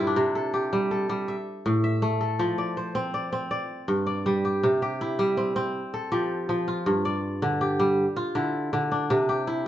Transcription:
0.00 0.22 G2 medium
0.00 0.22 G3 medium
0.00 1.54 E4 medium
0.00 1.34 F4 medium
0.00 0.53 G4 medium
0.00 0.35 A4 medium
0.00 0.22 B4 medium
0.00 0.14 C5 medium
0.07 1.75 D4 medium
0.16 1.34 C3 medium
0.35 0.91 A4 medium
0.54 1.95 G4 medium
0.73 1.08 G3 medium
0.91 2.20 A4 medium
1.09 1.34 G3 medium
1.28 1.83 E5 medium
1.66 2.45 A2 medium
1.84 2.45 E5 medium
2.02 4.02 A3 medium
2.21 3.52 A4 medium
2.39 3.57 F3 medium
2.58 3.14 D5 medium
2.77 3.96 C5 medium
2.95 3.32 C4 medium
3.14 3.50 D5 medium
3.32 5.12 C4 medium
3.51 4.06 D5 medium
3.88 4.68 G2 medium
4.06 5.17 D5 medium
4.26 4.68 G3 medium
4.45 4.82 G4 medium
4.63 5.80 C3 medium
4.82 6.11 G4 medium
5.01 6.18 E4 medium
5.19 5.80 G3 medium
5.37 5.55 C4 medium
5.56 7.36 C4 medium
5.94 7.25 A4 medium
6.12 6.48 F3 medium
6.12 7.53 G4 medium
6.49 6.92 F3 medium
6.68 8.16 F4 medium
6.86 8.04 G2 medium
7.05 8.16 D5 medium
7.42 8.04 D3 medium
7.61 9.02 G4 medium
7.80 8.04 G3 medium
8.16 9.53 F4 medium
8.35 8.72 D3 medium
8.35 9.47 E4 medium
8.73 9.16 D3 medium
8.92 9.68 D4 medium
9.10 9.68 C3 medium
9.29 9.68 G4 medium
9.47 9.68 E4 medium

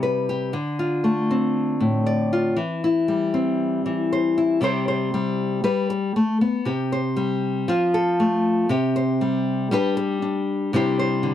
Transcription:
0.00 0.52 C3 medium
0.00 0.54 G3 medium
0.00 0.52 E4 medium
0.00 0.28 G4 soft
0.00 0.51 B4 medium
0.29 0.52 G4 medium
0.53 2.56 D3 medium
0.79 2.31 F4 medium
1.04 2.55 A3 medium
1.31 3.33 C4 medium
1.80 2.58 A2 medium
2.06 2.55 D5 medium
2.33 2.55 F4 medium
2.56 3.84 E3 medium
2.84 4.36 E4 medium
3.08 4.60 G3 medium
3.34 4.62 C4 medium
3.86 4.59 E3 medium
4.13 4.60 C5 medium
4.38 4.62 E4 medium
4.61 5.61 C3 medium
4.61 5.13 G3 medium
4.61 5.62 E4 medium
4.61 5.62 G4 medium
4.61 4.87 C5 medium
4.88 5.62 C5 medium
5.14 5.63 G3 medium
5.64 6.15 G3 medium
5.64 5.90 B4 medium
5.90 muted nylon-string guitar stroke medium
6.16 6.41 A3 medium
6.41 6.67 B3 medium
6.65 7.65 C3 medium
6.65 7.65 G4 medium
6.92 7.66 C5 medium
7.16 7.68 G3 medium
7.68 8.67 F3 medium
7.68 8.68 F4 medium
7.94 8.70 A4 medium
8.20 8.67 A3 medium
8.69 9.69 C3 medium
8.69 9.69 G4 medium
8.96 9.69 C5 medium
9.21 9.70 G3 medium
9.71 10.73 G3 medium
9.71 10.21 D4 medium
9.71 10.71 G4 medium
9.71 9.96 B4 medium
9.97 muted nylon-string guitar stroke medium
10.22 10.71 D4 medium
10.73 11.34 C3 medium
10.73 11.34 G3 medium
10.73 11.34 E4 medium
10.73 11.34 G4 medium
10.73 10.98 C5 medium
10.99 11.34 C5 medium
11.23 11.34 D3 medium

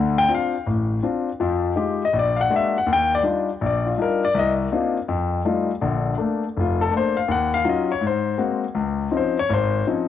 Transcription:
0.00 0.25 D2 medium
0.00 0.25 D3 medium
0.18 0.30 G5 loud
0.28 0.54 C4 soft
0.28 0.54 D4 soft
0.28 0.54 F4 medium
0.35 0.67 F5 medium
0.67 0.98 A1 medium
1.03 1.28 C4 soft
1.03 1.28 D4 soft
1.03 1.28 F4 medium
1.40 1.72 F2 medium
1.40 1.72 F3 medium
1.76 2.01 G#3 soft
1.76 2.01 D#4 soft
1.76 2.02 F4 soft
1.76 2.02 G4 medium
2.05 2.16 D#5 medium
2.13 2.45 A#1 medium
2.19 2.39 D5 medium
2.41 2.52 F#5 medium
2.50 2.75 G#3 medium
2.50 2.75 A#3 soft
2.50 2.76 D4 soft
2.50 2.76 F#4 medium
2.56 2.76 E5 medium
2.78 2.89 F#5 medium
2.87 3.19 D#2 medium
2.93 3.13 G5 loud
3.15 3.22 D5 medium
3.23 3.48 G3 soft
3.23 3.49 D4 soft
3.23 3.49 D#4 soft
3.23 3.49 F4 medium
3.61 3.93 A#1 medium
3.66 3.87 D5 medium
3.86 3.97 F4 medium
3.98 4.23 G3 soft
3.98 4.23 D4 soft
3.98 4.23 D#4 soft
3.98 4.23 F4 medium
4.02 4.23 A#4 medium
4.25 4.36 D5 medium
4.34 4.66 C2 medium
4.39 4.52 D#5 loud
4.72 4.96 A#3 medium
4.72 4.97 C4 soft
4.72 4.97 D4 soft
4.72 4.97 D#4 soft
4.72 4.97 F4 medium
5.08 5.40 F2 medium
5.45 5.70 G3 medium
5.45 5.70 A3 soft
5.45 5.70 D#4 soft
5.45 5.70 F4 medium
5.81 6.13 A#1 medium
5.81 6.13 D3 medium
6.18 6.43 A3 medium
6.18 6.43 A#3 soft
6.18 6.43 D4 medium
6.56 6.87 F1 medium
6.56 6.81 F4 medium
6.81 6.93 A4 medium
6.91 7.16 A3 soft
6.91 7.16 A#3 soft
6.91 7.17 D4 medium
6.97 7.17 C5 medium
7.17 7.29 F5 medium
7.28 7.60 D#2 medium
7.28 7.53 F#5 medium
7.54 7.66 F5 medium
7.65 7.90 F#3 soft
7.65 7.90 C#4 soft
7.65 7.90 D#4 soft
7.65 7.90 F4 medium
7.69 7.90 D#5 medium
7.92 8.03 C#5 medium
8.01 8.33 G#2 medium
8.07 8.39 C5 medium
8.38 8.63 G#3 soft
8.38 8.63 A#3 soft
8.38 8.63 C4 soft
8.38 8.63 F#4 medium
8.75 9.07 C#2 medium
9.11 9.37 F3 medium
9.11 9.37 C4 soft
9.11 9.37 C#4 soft
9.11 9.37 D#4 medium
9.17 9.37 C5 medium
9.39 9.50 C#5 medium
9.50 9.81 G#1 medium
9.50 9.85 C5 medium
9.87 10.08 F3 medium
9.87 10.08 C4 soft
9.87 10.08 C#4 soft
9.87 10.08 D#4 medium

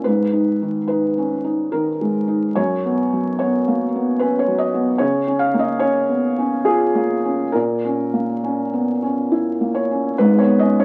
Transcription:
0.04 2.53 G#2 soft
0.04 0.86 B4 medium
0.33 0.78 D#4 soft
0.62 1.07 D#3 soft
0.88 1.34 D#4 soft
0.88 1.72 B4 medium
1.18 1.45 C#4 soft
1.44 1.89 D#4 soft
1.72 2.18 D#3 soft
1.72 2.56 A#4 medium
2.01 2.46 G#3 soft
2.28 2.56 D#4 soft
2.55 4.97 F#2 medium
2.55 3.37 C#5 medium
2.86 3.30 B3 soft
3.13 3.57 F#3 soft
3.39 3.84 B3 soft
3.39 4.21 C#5 medium
3.68 3.95 A#3 soft
3.96 4.38 B3 soft
4.19 4.64 C#4 soft
4.19 4.40 B4 medium
4.39 4.60 C#5 medium
4.47 4.90 F#3 soft
4.58 5.00 D#5 medium
4.74 5.01 B3 soft
4.98 7.49 C#3 medium
4.98 5.40 C#5 medium
5.27 5.70 C#4 soft
5.39 5.60 F5 medium
5.54 5.98 A#3 soft
5.59 5.81 D#5 medium
5.79 6.26 C#4 soft
5.79 6.65 C#5 medium
6.09 6.38 B3 soft
6.38 6.84 C#4 soft
6.65 7.13 F4 soft
6.65 7.53 G#4 medium
6.95 7.42 A#3 soft
7.24 7.54 C#4 soft
7.52 10.16 A#2 medium
7.52 9.31 A#4 medium
7.85 8.32 C#4 soft
8.13 8.61 A#3 soft
8.44 8.91 C#4 soft
8.73 9.03 B3 soft
9.02 9.50 C#4 soft
9.31 9.79 E4 soft
9.61 10.08 A#3 soft
9.75 10.19 C#5 medium
9.91 10.20 C#4 soft
10.18 10.85 G#1 medium
10.18 10.85 G#2 medium
10.18 10.40 B4 medium
10.39 10.74 B3 soft
10.39 10.61 C#5 medium
10.59 10.83 C#4 soft
10.59 10.82 D#5 medium
10.80 10.85 B3 soft
10.80 10.85 C#5 medium

